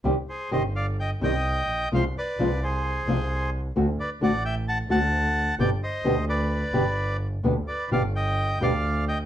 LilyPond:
<<
  \new Staff \with { instrumentName = "Bandoneon" } { \time 4/4 \key c \minor \tempo 4 = 130 r8 <aes' c''>8 <c'' ees''>8 <d'' f''>8 <ees'' g''>8 <ees'' g''>4. | <c'' f''>8 <b' d''>4 <aes' c''>2 r8 | r8 <b' d''>8 <d'' fis''>8 <e'' g''>8 <fis'' a''>8 <fis'' a''>4. | <d'' g''>8 <c'' ees''>4 <b' d''>2 r8 |
r8 <b' d''>8 <d'' f''>8 <ees'' g''>4 <d'' f''>4 <ees'' g''>8 | }
  \new Staff \with { instrumentName = "Nylon-string guitar" } { \clef bass \time 4/4 \key c \minor <c ees g c' g'>8 r8 <c ees g c' g'>8 r4 <c ees g c' g'>8 r4 | <c f aes c' f'>8 r8 <c f aes c' f'>8 r4 <c f aes c' f'>8 r4 | <d a c' fis'>8 r8 <d a c' fis'>8 r4 <d a c' fis'>8 r4 | <b, d g b g'>8 r8 <b, d g b g'>8 r4 <b, d g b g'>8 r4 |
<b, d g b g'>8 r8 <b, d g b g'>8 r4 <b, d g b g'>8 r4 | }
  \new Staff \with { instrumentName = "Double bass" } { \clef bass \time 4/4 \key c \minor c,8 r8 g,,4. c,4 bes,,8 | c,8 r8 c,4. c,4. | d,8 r8 a,,4. d,4. | g,,8 r8 d,4. g,,4. |
d,8 r8 g,,4. d,4. | }
>>